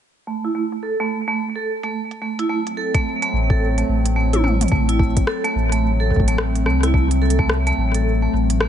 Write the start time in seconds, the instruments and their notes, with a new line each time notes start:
0.27 vibraphone A3
0.44 vibraphone E4, closed hi-hat
0.55 vibraphone A3
0.72 closed hi-hat
0.83 vibraphone A4
1.00 vibraphone A3, closed hi-hat
1.28 vibraphone A3
1.55 vibraphone A4
1.83 vibraphone A3, closed hi-hat
2.11 closed hi-hat
2.22 vibraphone A3
2.39 vibraphone E4, closed hi-hat
2.49 ambient pad F#3 A3 C4, vibraphone A3
2.67 closed hi-hat
2.77 vibraphone A4
2.94 vibraphone A3, kick, closed hi-hat
3.22 vibraphone A3, closed hi-hat
3.33 sub bass A1
3.50 vibraphone A4, kick
3.78 vibraphone A3, closed hi-hat
3.88 sub bass A1
4.06 closed hi-hat
4.16 vibraphone A3
4.33 vibraphone E4, closed hi-hat, high tom
4.44 vibraphone A3, mid tom
4.61 closed hi-hat, mid tom
4.68 sub bass A1, ambient pad F#3 A3 C4, vibraphone A3, kick, closed hi-hat
4.89 vibraphone E4, closed hi-hat
4.99 vibraphone A3, kick
5.17 kick, closed hi-hat
5.27 vibraphone A4, cross-stick
5.45 vibraphone A3, closed hi-hat
5.55 sub bass A1
5.72 vibraphone A3, closed hi-hat
6.00 vibraphone A4
6.11 kick
6.16 kick
6.20 kick
6.28 vibraphone A3, closed hi-hat
6.38 cross-stick
6.56 closed hi-hat
6.66 sub bass C2, vibraphone A3, cross-stick
6.83 vibraphone E4, cross-stick, closed hi-hat
6.94 vibraphone A3, kick
7.11 closed hi-hat
7.22 vibraphone A4
7.30 closed hi-hat
7.39 vibraphone A3, kick
7.49 cross-stick
7.67 vibraphone A3, closed hi-hat
7.77 sub bass A1
7.94 vibraphone A4, closed hi-hat
8.22 vibraphone A3
8.33 sub bass A1
8.50 closed hi-hat
8.61 vibraphone A3, cross-stick